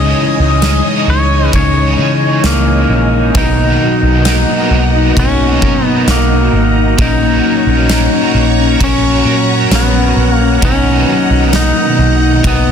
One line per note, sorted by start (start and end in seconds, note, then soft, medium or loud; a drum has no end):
0.00 0.11 C#2 loud
0.00 0.62 C#3 medium
0.00 1.53 C#3 medium
0.00 0.62 E3 medium
0.00 0.60 G#3 medium
0.00 0.61 G#3 medium
0.00 0.62 C#4 medium
0.00 0.39 D#4 medium
0.00 0.64 D#4 medium
0.00 0.63 G#4 medium
0.00 3.32 C#5 medium
0.00 1.09 D#5 loud
0.00 3.31 D#5 medium
0.00 3.31 G#5 medium
0.00 3.31 D#6 loud
0.17 1.98 E3 medium
0.39 0.80 C#2 loud
0.39 0.84 D#4 medium
0.61 1.52 G#3 medium
0.61 1.07 G#3 medium
0.61 1.53 C#4 medium
0.61 1.54 D#4 medium
0.61 snare loud
0.61 ride medium
0.61 tambourine medium
0.65 1.54 G#4 medium
0.85 1.30 D#4 medium
1.08 1.48 C#2 loud
1.08 1.75 G#3 medium
1.08 1.54 C#5 medium
1.31 1.54 D#4 medium
1.52 1.93 C#2 loud
1.52 1.98 C#3 medium
1.52 3.35 C#3 medium
1.52 1.99 E3 medium
1.52 1.99 G#3 medium
1.52 1.99 C#4 medium
1.52 2.21 D#4 medium
1.52 1.99 D#4 medium
1.52 1.97 G#4 medium
1.52 2.87 C#5 medium
1.52 kick medium
1.52 ride medium
1.76 2.43 G#3 medium
1.98 2.39 C#3 medium
1.98 3.44 E3 medium
1.98 3.35 G#3 soft
1.98 3.36 C#4 soft
1.98 3.36 D#4 soft
1.98 3.35 G#4 medium
2.22 2.67 D#4 medium
2.44 2.84 C#2 loud
2.44 2.89 G#3 medium
2.44 3.39 A#3 medium
2.44 snare loud
2.44 ride medium
2.44 tambourine medium
2.67 3.12 D#4 medium
2.89 3.29 A#1 medium
2.89 3.44 G#3 medium
3.13 3.36 D#4 medium
3.34 3.75 B1 loud
3.34 4.26 B2 medium
3.34 5.16 B2 medium
3.34 4.26 D#3 medium
3.34 4.24 F#3 medium
3.34 4.25 B3 medium
3.34 4.02 D#4 medium
3.34 4.27 D#4 medium
3.34 5.19 D#4 loud
3.34 4.28 A#4 medium
3.34 6.95 D#5 medium
3.34 6.95 F#5 medium
3.34 12.72 A#5 medium
3.34 kick loud
3.34 ride medium
3.58 4.26 A#3 medium
3.81 5.62 F#3 medium
4.03 4.43 B1 loud
4.03 4.47 D#4 medium
4.25 5.17 F#3 medium
4.25 4.71 A#3 medium
4.25 5.17 B3 medium
4.25 5.17 D#4 medium
4.25 snare loud
4.25 ride medium
4.25 tambourine medium
4.29 5.18 A#4 medium
4.49 4.93 D#4 medium
4.71 5.11 B1 loud
4.71 5.39 A#3 medium
4.94 5.16 D#4 medium
5.16 5.57 B1 loud
5.16 5.62 B2 medium
5.16 6.98 B2 medium
5.16 5.62 D#3 medium
5.16 5.63 F#3 medium
5.16 5.63 B3 medium
5.16 5.85 C#4 loud
5.16 5.84 D#4 medium
5.16 5.62 D#4 medium
5.16 5.60 A#4 medium
5.16 kick medium
5.16 ride medium
5.40 6.07 A#3 medium
5.62 6.02 B2 medium
5.62 7.44 F#3 medium
5.62 6.99 D#4 soft
5.62 7.00 A#4 medium
5.62 kick medium
5.66 6.97 F#3 soft
5.85 6.12 B3 loud
5.85 6.29 D#4 medium
6.07 6.47 B1 loud
6.07 6.53 A#3 medium
6.07 7.03 A#3 medium
6.07 snare loud
6.07 ride medium
6.07 tambourine medium
6.30 6.74 D#4 medium
6.53 6.93 G#1 medium
6.53 7.21 A#3 medium
6.76 6.98 D#4 medium
6.98 7.39 A#1 loud
6.98 8.80 A#2 medium
6.98 7.88 A#3 medium
6.98 7.89 C#4 medium
6.98 7.66 C#4 medium
6.98 8.83 D#4 loud
6.98 7.91 F#4 medium
6.98 7.93 A#4 medium
6.98 10.59 C#5 medium
6.98 12.72 F#5 medium
6.98 10.59 C#6 medium
6.98 kick loud
6.98 ride medium
7.21 7.89 A#3 medium
7.44 9.25 F#3 medium
7.67 8.07 A#1 loud
7.67 8.11 C#4 medium
7.89 8.79 A#3 medium
7.89 8.35 A#3 medium
7.89 8.80 C#4 medium
7.89 8.81 F#4 medium
7.89 snare loud
7.89 ride medium
7.89 tambourine medium
7.93 8.82 A#4 medium
8.12 8.56 C#4 medium
8.34 8.75 A#1 loud
8.34 9.03 A#3 medium
8.58 8.80 C#4 medium
8.80 9.20 A#1 loud
8.80 9.26 A#3 medium
8.80 9.26 C#4 medium
8.80 9.26 F#4 medium
8.80 9.24 A#4 medium
8.80 kick loud
8.80 ride medium
8.84 9.69 C#4 loud
9.03 10.65 A#3 medium
9.25 9.65 A#2 loud
9.25 11.07 F#3 medium
9.25 10.66 F#4 soft
9.25 10.64 A#4 medium
9.29 10.64 C#4 soft
9.49 9.93 C#4 medium
9.71 10.11 A#1 loud
9.71 snare loud
9.71 ride medium
9.71 tambourine medium
9.75 10.32 B3 medium
9.94 10.39 C#4 medium
10.16 10.57 A#1 medium
10.32 10.60 A#3 medium
10.40 10.62 C#4 medium
10.61 11.02 B1 loud
10.61 12.41 B2 medium
10.61 12.43 B2 medium
10.61 12.44 D#3 medium
10.61 12.44 F#3 medium
10.61 12.45 B3 medium
10.61 11.57 C#4 loud
10.61 11.30 D#4 medium
10.61 12.72 D#5 medium
10.61 kick loud
10.61 ride medium
10.66 12.47 D#4 medium
10.66 12.47 A#4 medium
10.85 11.52 A#3 medium
11.08 12.72 F#3 medium
11.30 11.70 B1 loud
11.30 11.75 D#4 medium
11.53 11.97 A#3 medium
11.53 12.48 D#4 loud
11.53 snare loud
11.53 ride medium
11.53 tambourine medium
11.76 12.21 D#4 medium
11.99 12.39 B1 loud
11.99 12.67 A#3 medium
12.21 12.44 D#4 medium
12.42 12.72 B1 loud
12.42 12.72 B2 medium
12.42 12.72 D#3 medium
12.42 12.72 F#3 medium
12.42 12.72 D#4 medium
12.42 kick loud
12.42 ride medium
12.47 12.72 B3 loud
12.47 12.72 D#4 medium
12.47 12.72 A#4 medium